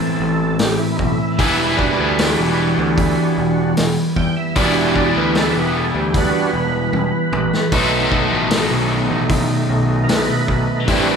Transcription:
Already playing: overdriven electric guitar A2 E3 A3 C4 E4, tonewheel organ A4
0.20 picked electric bass A1
0.59 picked electric bass A1, tonewheel organ G4, snare, open hi-hat
0.79 tonewheel organ E4
0.96 picked electric bass B1, tonewheel organ D#4, kick
1.02 tonewheel organ E4
1.39 picked electric bass E1, overdriven electric guitar E3 G3 B3 E4, kick, open hi-hat
1.77 tonewheel organ G3 D4 F#4, kick
1.99 picked electric bass D2
2.19 snare, open hi-hat
2.38 picked electric bass E1
2.78 picked electric bass D2
2.98 kick, open hi-hat
3.38 picked electric bass E1, tonewheel organ G3 D4 F#4
3.77 picked electric bass E1, snare, open hi-hat
4.16 picked electric bass E2, tonewheel organ G5, kick
4.36 tonewheel organ E5
4.56 picked electric bass E1, overdriven electric guitar E3 G3 B3 E4, tonewheel organ G3 D4 F#4 D5, kick, open hi-hat
4.76 tonewheel organ E5
4.96 tonewheel organ D5, kick
5.16 picked electric bass D2, tonewheel organ B4
5.35 tonewheel organ A4, snare, open hi-hat
5.55 picked electric bass E1, tonewheel organ B4
5.77 tonewheel organ A4
5.95 picked electric bass D2, tonewheel organ G4
6.14 tonewheel organ G3 D4 F#4 B4, kick, open hi-hat
6.53 picked electric bass E1
6.93 picked electric bass E1, high tom
7.32 picked electric bass A1, mid tom
7.53 snare
7.72 picked electric bass B1, overdriven electric guitar B2 D#3 F#3 B3 D#4 A4, tonewheel organ A3 D#4, kick, open hi-hat
8.12 kick
8.33 picked electric bass A1
8.50 snare, open hi-hat
8.71 picked electric bass B1
9.10 picked electric bass A1
9.29 kick, open hi-hat
9.69 picked electric bass B1
10.04 tonewheel organ A#4
10.08 picked electric bass B1, tonewheel organ D#4 B4, snare, open hi-hat
10.48 picked electric bass B1, tonewheel organ D#4 B4, kick
10.88 picked electric bass A1, overdriven electric guitar A2 E3 A3 C4 E4, tonewheel organ G3 C4 D4 B4, kick, open hi-hat

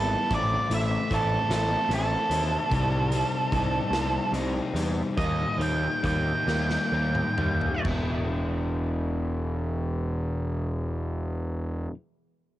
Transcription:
Already playing: picked electric bass G#1, overdriven electric guitar E3 G3 B3 E4, clean electric guitar B3 E4, lead electric guitar A4
0.30 picked electric bass A1, overdriven electric guitar A2 E3 A3 C4 E4, kick, closed hi-hat
0.34 lead electric guitar D5
0.70 picked electric bass A1, overdriven electric guitar A3 C4 E4, closed hi-hat
0.74 lead electric guitar E5
1.11 picked electric bass A1, overdriven electric guitar E3 A3 C4 E4, lead electric guitar A4, kick, closed hi-hat
1.49 picked electric bass A1, overdriven electric guitar A3 C4 E4, snare, closed hi-hat
1.54 lead electric guitar A4
1.89 picked electric bass A1, overdriven electric guitar E3 A3 C4 E4, closed hi-hat
1.94 lead electric guitar A4
2.30 picked electric bass D#2, overdriven electric guitar A3 C4 E4, closed hi-hat
2.70 picked electric bass C2, overdriven electric guitar C3 G3 C4 D#4, kick, closed hi-hat
3.11 overdriven electric guitar G3 C4 D#4, closed hi-hat
3.52 picked electric bass C2, overdriven electric guitar C3 G3 C4 D#4, kick, closed hi-hat
3.90 picked electric bass C2, overdriven electric guitar D#4, snare, closed hi-hat
3.94 overdriven electric guitar G3 C4
4.32 picked electric bass C2, overdriven electric guitar C3 G3 C4 D#4, closed hi-hat
4.74 picked electric bass E2, overdriven electric guitar G3 C4 D#4, closed hi-hat
5.17 picked electric bass D#2, overdriven electric guitar D#3 G3 A#3 D#4, lead electric guitar D#5, kick, closed hi-hat
5.58 picked electric bass D#2, overdriven electric guitar G3 A#3 D#4, lead electric guitar G5, closed hi-hat
6.03 picked electric bass D#2, overdriven electric guitar D#3 G3 A#3 D#4, lead electric guitar G5, kick, closed hi-hat
6.47 picked electric bass D#2, overdriven electric guitar G3 A#3 D#4, snare
6.70 snare
6.92 picked electric bass D#2, overdriven electric guitar D#3 G3 A#3 D#4
7.15 mid tom
7.37 picked electric bass D#2, overdriven electric guitar G3 A#3 D#4, mid tom
7.61 floor tom
7.83 picked electric bass E1, overdriven electric guitar E2 B2, clean electric guitar E3 G#3 B3 E4, kick, crash
7.89 overdriven electric guitar E3

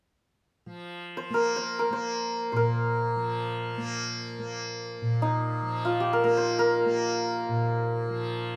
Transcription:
0.66 tanpura F3
1.17 santur C5
1.30 tanpura A#3, santur A#4
1.56 santur C5
1.79 santur A#4
1.90 tanpura A#3, santur C5
2.52 tanpura A#2, santur C5
2.56 santur A#4
3.16 tanpura F3
3.77 tanpura A#3
4.39 tanpura A#3
5.02 tanpura A#2
5.22 santur D#4
5.62 tanpura F3
5.85 santur F4
6.00 santur G4
6.13 santur A#4
6.24 tanpura A#3, santur A#4
6.37 santur C5
6.59 santur A#4
6.85 tanpura A#3
7.49 tanpura A#2
8.09 tanpura F3

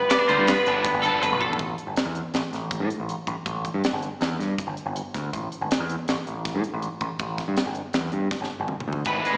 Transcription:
Already playing: clean electric guitar G2 B4
0.09 clean electric guitar B3 D5, muted overdriven electric guitar stroke, snare, closed hi-hat
0.19 clean electric guitar D4
0.27 picked electric bass D2, clean electric guitar D3 F4 C5, overdriven electric guitar F3 B3 D4, closed hi-hat
0.31 overdriven electric guitar D3
0.38 picked electric bass G2
0.46 clean electric guitar B3 B4, muted overdriven electric guitar stroke, snare, closed hi-hat
0.66 picked electric bass G1, overdriven electric guitar D3 F3 B3 D4, clean electric guitar D4, closed hi-hat
0.84 clean electric guitar G2 B3, muted overdriven electric guitar stroke, kick, closed hi-hat
0.94 picked electric bass G1
1.02 overdriven electric guitar F3 B3 D4, clean electric guitar A4, closed hi-hat
1.06 overdriven electric guitar D3
1.22 picked electric bass G1, clean electric guitar F2 B4, muted overdriven electric guitar stroke, closed hi-hat
1.32 picked electric bass B1
1.40 clean electric guitar G2 A4, muted overdriven electric guitar stroke, kick
1.50 picked electric bass E2, floor tom
1.59 picked electric bass A1, kick, closed hi-hat
1.78 closed hi-hat
1.87 picked electric bass G1
1.96 snare, closed hi-hat
2.05 picked electric bass E2
2.15 closed hi-hat
2.34 picked electric bass A1, snare, closed hi-hat
2.53 picked electric bass A1, snare, closed hi-hat
2.71 kick, closed hi-hat
2.80 picked electric bass A2
2.90 closed hi-hat
3.00 picked electric bass A1
3.09 closed hi-hat
3.27 picked electric bass A1, kick, closed hi-hat
3.46 picked electric bass A1, kick, closed hi-hat
3.65 kick, closed hi-hat
3.74 picked electric bass G2
3.84 snare, closed hi-hat
3.93 picked electric bass G1
4.02 closed hi-hat
4.21 picked electric bass E2, snare, closed hi-hat
4.39 picked electric bass G2, snare, closed hi-hat
4.58 kick, closed hi-hat
4.67 picked electric bass G1
4.77 closed hi-hat
4.86 picked electric bass G1
4.96 closed hi-hat
5.14 picked electric bass D2, kick, snare, closed hi-hat
5.33 picked electric bass A1, kick, closed hi-hat
5.52 closed hi-hat
5.61 picked electric bass G1
5.71 snare, closed hi-hat
5.80 picked electric bass E2
5.90 closed hi-hat
6.08 picked electric bass A1, snare, closed hi-hat
6.27 picked electric bass A1, closed hi-hat
6.45 kick, snare, closed hi-hat
6.55 picked electric bass A2
6.64 closed hi-hat
6.74 picked electric bass A1
6.82 closed hi-hat
7.01 picked electric bass A1, kick, closed hi-hat
7.19 picked electric bass A1, kick, closed hi-hat
7.38 kick, snare, closed hi-hat
7.48 picked electric bass G2
7.57 snare, closed hi-hat
7.66 picked electric bass G1
7.75 closed hi-hat
7.93 picked electric bass E2, snare, closed hi-hat
8.12 picked electric bass G2, closed hi-hat
8.31 kick, snare
8.41 picked electric bass G1, snare
8.60 picked electric bass G1
8.68 mid tom
8.80 mid tom
8.88 picked electric bass D2
8.93 floor tom
9.05 picked electric bass G#1, clean electric guitar G#2 B4, overdriven electric guitar G#3 D4 E4 B4, kick, closed hi-hat
9.24 clean electric guitar G#3, overdriven electric guitar D4 E4 B4, snare, closed hi-hat
9.34 picked electric bass D2

